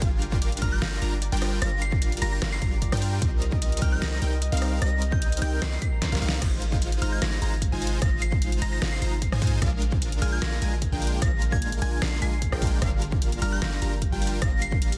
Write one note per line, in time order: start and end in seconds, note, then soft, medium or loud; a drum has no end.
0.00 0.60 G1 loud
0.00 0.60 G3 medium
0.00 0.60 D4 medium
0.00 0.60 F4 medium
0.00 0.61 F4 medium
0.00 0.28 G#4 medium
0.00 1.94 A#4 medium
0.00 0.60 A#4 medium
0.00 0.32 D5 loud
0.00 0.60 F5 medium
0.00 0.28 G#5 medium
0.00 kick loud
0.00 closed hi-hat medium
0.22 0.72 G4 medium
0.22 closed hi-hat medium
0.32 0.41 D5 loud
0.32 kick loud
0.42 1.12 D5 loud
0.42 closed hi-hat medium
0.52 closed hi-hat soft
0.57 closed hi-hat medium
0.62 0.80 G1 loud
0.62 0.80 G3 medium
0.62 0.80 D4 medium
0.62 0.81 F4 loud
0.62 0.80 F4 medium
0.62 0.80 A#4 medium
0.62 0.80 A#5 medium
0.62 0.80 A#5 loud
0.62 0.70 F6 medium
0.62 kick medium
0.62 closed hi-hat medium
0.72 1.01 G4 loud
0.72 0.80 G6 medium
0.82 1.00 G1 medium
0.82 1.00 G3 medium
0.82 1.00 D4 medium
0.82 1.41 F4 medium
0.82 1.00 F4 medium
0.82 1.00 A#4 medium
0.82 1.00 F5 medium
0.82 0.96 A#6 medium
0.82 snare loud
0.82 closed hi-hat medium
1.02 1.30 G1 loud
1.02 1.14 G3 medium
1.02 1.14 D4 medium
1.02 1.14 F4 medium
1.02 1.52 G4 medium
1.02 1.14 A#4 medium
1.02 1.14 A#5 loud
1.02 closed hi-hat medium
1.12 1.21 D5 loud
1.22 1.92 D5 loud
1.22 closed hi-hat medium
1.32 1.60 G1 loud
1.32 1.60 G3 loud
1.32 1.60 D4 medium
1.32 1.60 F4 medium
1.32 1.60 A#4 medium
1.32 1.60 G5 loud
1.32 closed hi-hat soft
1.37 closed hi-hat medium
1.42 1.61 F4 loud
1.42 cross-stick medium
1.42 open hi-hat medium
1.52 1.81 G4 loud
1.62 2.20 G1 loud
1.62 2.20 G3 medium
1.62 2.20 D4 medium
1.62 2.22 F4 medium
1.62 2.20 F4 medium
1.62 2.20 A#4 medium
1.62 2.20 F5 medium
1.62 1.76 A#6 medium
1.62 cross-stick medium
1.62 closed hi-hat medium
1.82 2.32 G4 medium
1.82 1.96 C7 loud
1.82 closed hi-hat medium
1.92 2.02 D5 loud
1.92 kick loud
2.02 2.72 D5 loud
2.02 closed hi-hat medium
2.12 closed hi-hat soft
2.17 closed hi-hat medium
2.22 2.40 G1 loud
2.22 2.40 G3 medium
2.22 2.40 D4 medium
2.22 2.40 F4 medium
2.22 2.42 F4 loud
2.22 2.40 A#4 medium
2.22 2.40 A#5 medium
2.22 2.40 A#5 loud
2.22 2.30 A#6 medium
2.22 closed hi-hat medium
2.32 2.61 G4 loud
2.32 2.50 A#6 medium
2.42 2.60 G1 medium
2.42 2.60 G3 medium
2.42 2.60 D4 medium
2.42 2.60 F4 medium
2.42 2.60 A#4 medium
2.42 2.60 F5 medium
2.42 cross-stick medium
2.42 snare loud
2.42 closed hi-hat medium
2.52 2.58 C7 medium
2.62 2.90 G1 loud
2.62 2.74 G3 medium
2.62 2.74 D4 medium
2.62 2.74 F4 medium
2.62 3.12 G4 medium
2.62 2.74 A#4 medium
2.62 2.74 A#5 loud
2.62 2.69 C7 medium
2.62 kick loud
2.62 closed hi-hat medium
2.72 2.81 D5 loud
2.82 3.58 D5 loud
2.82 kick medium
2.82 closed hi-hat medium
2.92 3.20 G2 loud
2.92 3.20 G3 medium
2.92 3.20 D4 medium
2.92 3.20 F4 medium
2.92 3.20 A#4 medium
2.92 3.20 G5 loud
2.92 cross-stick medium
2.92 closed hi-hat medium
2.97 closed hi-hat medium
3.02 5.54 F4 loud
3.02 open hi-hat medium
3.12 3.21 G4 loud
3.22 3.80 C2 medium
3.22 3.81 G4 medium
3.22 3.80 D#5 medium
3.22 kick loud
3.22 closed hi-hat medium
3.42 3.92 A#4 medium
3.42 closed hi-hat medium
3.52 3.61 D#5 loud
3.52 kick loud
3.62 4.32 D#5 loud
3.62 closed hi-hat medium
3.72 closed hi-hat medium
3.77 closed hi-hat medium
3.82 4.00 C2 loud
3.82 4.00 G3 medium
3.82 4.00 C4 medium
3.82 4.00 D#4 medium
3.82 4.01 G4 loud
3.82 4.00 A#4 medium
3.82 4.00 G5 loud
3.82 3.90 F6 medium
3.82 kick medium
3.82 closed hi-hat medium
3.92 4.21 A#4 loud
3.92 4.00 G6 medium
4.02 4.20 C2 medium
4.02 4.20 G3 medium
4.02 4.20 C4 medium
4.02 4.20 D#4 medium
4.02 4.61 G4 medium
4.02 4.20 A#4 medium
4.02 4.20 D#5 medium
4.02 4.16 A#6 medium
4.02 snare loud
4.02 closed hi-hat medium
4.22 4.50 C2 medium
4.22 4.34 G3 loud
4.22 4.34 C4 medium
4.22 4.34 D#4 medium
4.22 4.72 A#4 medium
4.22 4.34 A#4 medium
4.22 4.34 G5 loud
4.22 closed hi-hat medium
4.32 4.41 D#5 loud
4.42 5.12 D#5 loud
4.42 closed hi-hat medium
4.52 4.80 C2 loud
4.52 4.80 G3 medium
4.52 4.80 C4 medium
4.52 4.80 D#4 medium
4.52 4.80 A#4 medium
4.52 4.80 F5 loud
4.52 closed hi-hat medium
4.57 closed hi-hat medium
4.62 4.81 G4 loud
4.62 cross-stick medium
4.62 open hi-hat medium
4.72 5.01 A#4 loud
4.82 5.40 C2 medium
4.82 5.40 G3 medium
4.82 5.40 C4 medium
4.82 5.40 D#4 medium
4.82 5.41 G4 medium
4.82 5.40 A#4 medium
4.82 5.40 D#5 medium
4.82 4.96 A#6 medium
4.82 cross-stick medium
4.82 closed hi-hat medium
5.02 5.52 A#4 medium
5.02 closed hi-hat medium
5.12 5.21 D#5 loud
5.12 5.25 G6 medium
5.12 kick loud
5.22 7.00 D#5 loud
5.22 closed hi-hat medium
5.32 closed hi-hat medium
5.37 closed hi-hat medium
5.42 5.60 C2 loud
5.42 5.60 G3 medium
5.42 5.60 C4 medium
5.42 5.60 D#4 medium
5.42 5.61 G4 loud
5.42 5.60 A#4 medium
5.42 5.60 G5 medium
5.42 5.60 G5 loud
5.42 5.56 G6 medium
5.42 closed hi-hat medium
5.52 7.64 A#4 loud
5.62 5.78 C2 medium
5.62 5.80 G3 medium
5.62 5.80 C4 medium
5.62 5.80 D#4 medium
5.62 5.80 A#4 medium
5.62 5.80 D#5 medium
5.62 5.80 C7 medium
5.62 cross-stick medium
5.62 snare loud
5.62 closed hi-hat medium
5.82 6.32 G4 medium
5.82 6.12 C7 medium
5.82 kick loud
5.82 closed hi-hat medium
5.92 7.32 A#5 medium
6.02 6.21 C5 medium
6.02 kick medium
6.02 snare medium
6.02 closed hi-hat medium
6.12 6.20 C2 loud
6.12 6.20 G3 medium
6.12 6.20 C4 medium
6.12 6.20 D#4 medium
6.12 6.20 A#4 medium
6.12 6.20 F5 loud
6.12 6.20 F5 medium
6.12 snare medium
6.12 closed hi-hat medium
6.17 closed hi-hat medium
6.22 6.40 C2 loud
6.22 6.40 G3 loud
6.22 6.40 C4 medium
6.22 6.40 D#4 medium
6.22 6.40 A#4 medium
6.22 8.20 C5 medium
6.22 6.40 F5 loud
6.22 open hi-hat medium
6.29 8.68 G4 medium
6.29 snare loud
6.42 7.00 G#1 loud
6.42 9.59 C3 medium
6.42 9.59 G#3 medium
6.42 7.00 G#3 medium
6.42 7.00 D#4 medium
6.42 9.59 F4 medium
6.42 7.00 F4 medium
6.42 7.00 C5 medium
6.42 7.00 F5 medium
6.42 kick loud
6.42 cross-stick medium
6.42 closed hi-hat medium
6.42 crash loud
6.62 closed hi-hat medium
6.72 kick loud
6.82 closed hi-hat medium
6.92 closed hi-hat medium
7.02 7.20 G#1 loud
7.02 7.20 G#3 medium
7.02 7.20 D#4 medium
7.02 7.20 F4 medium
7.02 7.20 C5 medium
7.02 7.20 A#5 medium
7.02 7.20 A#5 loud
7.02 7.10 F6 medium
7.02 closed hi-hat medium
7.12 7.20 G#6 medium
7.22 7.40 G#1 medium
7.22 7.40 G#3 medium
7.22 7.40 D#4 medium
7.22 7.40 F4 medium
7.22 7.40 C5 medium
7.22 7.40 F5 medium
7.22 7.36 A#6 medium
7.22 snare loud
7.22 closed hi-hat medium
7.42 7.70 G#1 loud
7.42 7.54 G#3 medium
7.42 7.54 D#4 medium
7.42 7.54 F4 medium
7.42 7.54 C5 medium
7.42 7.54 A#5 loud
7.42 closed hi-hat medium
7.62 kick medium
7.62 closed hi-hat medium
7.72 8.00 G#1 loud
7.72 8.00 G#3 loud
7.72 8.00 D#4 medium
7.72 8.00 F4 medium
7.72 8.00 C5 medium
7.72 8.00 G#5 loud
7.82 open hi-hat medium
7.87 closed hi-hat medium
8.02 8.60 G#1 medium
8.02 8.60 G#3 medium
8.02 8.60 D#4 medium
8.02 8.60 F4 medium
8.02 8.60 C5 medium
8.02 8.60 F5 medium
8.02 8.16 A#6 medium
8.02 kick loud
8.02 cross-stick medium
8.02 closed hi-hat medium
8.22 8.36 C7 loud
8.22 closed hi-hat medium
8.32 kick loud
8.42 closed hi-hat medium
8.52 closed hi-hat medium
8.62 8.80 G#1 loud
8.62 8.80 G#3 medium
8.62 8.80 D#4 medium
8.62 8.80 F4 medium
8.62 8.80 C5 medium
8.62 8.80 A#5 medium
8.62 8.70 A#6 medium
8.62 closed hi-hat medium
8.72 8.90 A#6 medium
8.82 9.00 G#1 medium
8.82 9.00 G#3 medium
8.82 9.00 D#4 medium
8.82 9.00 F4 medium
8.82 9.00 C5 medium
8.82 9.00 F5 medium
8.82 cross-stick medium
8.82 snare loud
8.82 closed hi-hat medium
8.92 8.98 C7 medium
9.02 9.30 G#1 medium
9.02 9.14 G#3 medium
9.02 9.14 D#4 medium
9.02 9.14 F4 medium
9.02 9.14 C5 medium
9.02 9.14 A#5 loud
9.02 9.09 C7 medium
9.02 closed hi-hat medium
9.22 kick medium
9.22 closed hi-hat medium
9.32 9.60 G#2 loud
9.32 9.60 G#3 medium
9.32 9.60 D#4 medium
9.32 9.60 F4 medium
9.32 9.60 C5 medium
9.32 9.60 G#5 loud
9.32 cross-stick medium
9.42 kick loud
9.42 open hi-hat medium
9.47 closed hi-hat medium
9.62 10.20 A#1 loud
9.62 12.79 D3 medium
9.62 10.20 G#3 medium
9.62 14.98 A#3 medium
9.62 10.20 D4 medium
9.62 10.20 F4 medium
9.62 12.79 G#4 medium
9.62 10.20 A#4 medium
9.62 10.20 F5 medium
9.62 kick loud
9.62 cross-stick medium
9.62 closed hi-hat medium
9.82 closed hi-hat medium
9.92 kick loud
10.02 closed hi-hat medium
10.12 closed hi-hat medium
10.22 10.40 A#1 loud
10.22 10.40 G#3 medium
10.22 10.40 D4 medium
10.22 10.40 F4 medium
10.22 10.40 A#4 medium
10.22 10.40 G#5 loud
10.22 10.40 G#5 medium
10.22 10.30 F6 medium
10.22 closed hi-hat medium
10.32 10.40 G#6 medium
10.42 10.60 A#1 loud
10.42 10.60 G#3 medium
10.42 10.60 D4 medium
10.42 10.60 F4 medium
10.42 10.60 A#4 medium
10.42 10.60 F5 medium
10.42 10.56 A#6 loud
10.42 snare loud
10.42 closed hi-hat medium
10.62 10.90 A#1 loud
10.62 10.74 G#3 loud
10.62 10.74 D4 medium
10.62 10.74 F4 medium
10.62 10.74 A#4 medium
10.62 10.74 G#5 loud
10.62 closed hi-hat medium
10.82 kick medium
10.82 closed hi-hat medium
10.92 11.20 A#1 loud
10.92 11.20 G#3 medium
10.92 11.20 D4 medium
10.92 11.20 F4 medium
10.92 11.20 A#4 medium
10.92 11.20 G5 loud
11.02 open hi-hat medium
11.07 closed hi-hat medium
11.22 11.80 A#1 loud
11.22 11.80 G#3 medium
11.22 11.80 D4 medium
11.22 11.80 F4 medium
11.22 11.80 A#4 medium
11.22 11.80 F5 medium
11.22 11.36 A#6 medium
11.22 kick loud
11.22 cross-stick medium
11.22 closed hi-hat medium
11.42 closed hi-hat medium
11.52 11.65 G#6 medium
11.52 kick loud
11.62 closed hi-hat medium
11.72 closed hi-hat medium
11.82 12.00 A#1 loud
11.82 12.00 G#3 medium
11.82 12.00 D4 medium
11.82 12.00 F4 medium
11.82 12.00 A#4 medium
11.82 12.00 G#5 medium
11.82 12.00 G#5 loud
11.82 11.96 G#6 medium
11.82 closed hi-hat medium
12.02 12.20 A#1 loud
12.02 12.20 G#3 medium
12.02 12.20 D4 medium
12.02 12.20 A#4 medium
12.02 12.20 F5 medium
12.02 12.20 C7 medium
12.02 cross-stick medium
12.02 snare loud
12.02 closed hi-hat medium
12.22 12.50 A#1 loud
12.22 12.34 G#3 loud
12.22 12.34 D4 medium
12.22 12.34 F4 medium
12.22 12.34 A#4 medium
12.22 12.34 G#5 loud
12.22 12.52 C7 medium
12.22 closed hi-hat medium
12.42 kick medium
12.42 closed hi-hat medium
12.52 12.80 A#1 loud
12.52 12.80 G#3 loud
12.52 12.80 D4 medium
12.52 12.80 F4 medium
12.52 12.80 A#4 medium
12.52 12.80 G5 loud
12.52 cross-stick medium
12.62 kick loud
12.62 open hi-hat medium
12.67 closed hi-hat medium
12.82 13.40 G1 loud
12.82 14.98 F3 medium
12.82 13.40 G3 medium
12.82 13.40 D4 medium
12.82 13.40 F4 medium
12.82 14.98 G4 medium
12.82 13.40 A#4 medium
12.82 13.40 F5 medium
12.82 kick loud
12.82 cross-stick medium
12.82 closed hi-hat medium
13.02 closed hi-hat medium
13.12 kick loud
13.22 closed hi-hat medium
13.32 closed hi-hat medium
13.42 13.60 G1 loud
13.42 13.60 G3 medium
13.42 13.60 D4 medium
13.42 13.60 F4 medium
13.42 13.60 A#4 medium
13.42 13.60 A#5 medium
13.42 13.60 A#5 loud
13.42 13.50 F6 medium
13.42 closed hi-hat medium
13.52 13.60 G6 medium
13.62 13.80 G1 medium
13.62 13.80 G3 medium
13.62 13.80 D4 medium
13.62 13.80 F4 medium
13.62 13.80 A#4 medium
13.62 13.80 F5 medium
13.62 13.76 A#6 medium
13.62 snare loud
13.62 closed hi-hat medium
13.82 14.10 G1 medium
13.82 13.94 G3 medium
13.82 13.94 D4 medium
13.82 13.94 F4 medium
13.82 13.94 A#4 medium
13.82 13.94 A#5 loud
13.82 closed hi-hat medium
14.02 kick medium
14.02 closed hi-hat medium
14.12 14.40 G1 loud
14.12 14.40 G3 loud
14.12 14.40 D4 medium
14.12 14.40 F4 medium
14.12 14.40 A#4 medium
14.12 14.40 G5 loud
14.22 open hi-hat medium
14.27 closed hi-hat medium
14.42 14.98 G1 loud
14.42 14.98 G3 medium
14.42 14.98 D4 medium
14.42 14.98 F4 medium
14.42 14.98 A#4 medium
14.42 14.98 F5 medium
14.42 14.56 A#6 medium
14.42 kick loud
14.42 cross-stick medium
14.42 closed hi-hat medium
14.62 14.76 C7 medium
14.62 closed hi-hat medium
14.72 kick loud
14.82 closed hi-hat medium
14.92 closed hi-hat medium